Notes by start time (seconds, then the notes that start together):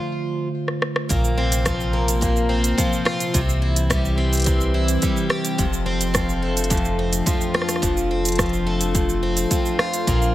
Already playing: D3 F3 A3 F4 C5
0.68 cross-stick
0.82 cross-stick
0.96 cross-stick
1.09 A#1 A#2 C3, kick, closed hi-hat, cabasa
1.24 cabasa
1.38 C4
1.51 A#3, closed hi-hat, cabasa
1.65 F3, kick, cross-stick, closed hi-hat, cabasa
1.80 cabasa
1.93 A#3
2.08 closed hi-hat, cabasa
2.21 A#2, kick, closed hi-hat, cabasa
2.36 cabasa
2.49 C4
2.64 closed hi-hat, cabasa
2.78 F3, kick, closed hi-hat, cabasa
2.93 cabasa
3.05 F4, cross-stick
3.20 closed hi-hat, cabasa
3.33 C2 C3 E3, kick, closed hi-hat, cabasa
3.49 cabasa
3.62 E4
3.76 closed hi-hat, cabasa
3.85 C4
3.90 G3, kick, cross-stick, closed hi-hat, cabasa
3.98 G4
4.05 cabasa
4.18 C4
4.33 closed hi-hat, cabasa
4.35 closed hi-hat
4.37 closed hi-hat
4.40 closed hi-hat
4.42 closed hi-hat
4.44 C3, closed hi-hat
4.46 kick, closed hi-hat, cabasa
4.61 cabasa
4.74 E4
4.88 closed hi-hat, cabasa
5.02 G3, kick, closed hi-hat, cabasa
5.17 cabasa
5.30 G4, cross-stick
5.45 closed hi-hat, cabasa
5.58 F1 F2 F3, kick, closed hi-hat, cabasa
5.73 cabasa
5.86 C4
6.01 closed hi-hat, cabasa
6.07 D4
6.14 F3, kick, cross-stick, closed hi-hat, cabasa
6.27 A4, cabasa
6.42 A3
6.57 closed hi-hat, cabasa
6.64 closed hi-hat
6.70 F2, kick, closed hi-hat, cabasa
6.77 closed hi-hat
6.85 cabasa
6.99 C4
7.13 closed hi-hat, cabasa
7.26 F3, kick, closed hi-hat, cabasa
7.41 cabasa
7.54 F4, cross-stick
7.62 cross-stick
7.69 cross-stick, closed hi-hat, cabasa
7.76 cross-stick
7.82 F1 F2, kick, closed hi-hat, cabasa
7.97 cabasa
8.11 C4
8.25 closed hi-hat, cabasa
8.29 closed hi-hat
8.32 closed hi-hat
8.35 F3, kick, cross-stick, closed hi-hat
8.39 closed hi-hat, cabasa
8.46 closed hi-hat
8.49 closed hi-hat
8.53 cabasa
8.67 A3
8.81 closed hi-hat, cabasa
8.95 F2, kick, closed hi-hat, cabasa
9.09 cabasa
9.23 C4
9.37 closed hi-hat, cabasa
9.51 F3, kick, closed hi-hat, cabasa
9.66 cabasa
9.79 F4, cross-stick
9.94 closed hi-hat, cabasa
10.07 A#1 A#2, kick, closed hi-hat, cabasa
10.14 C4
10.22 cabasa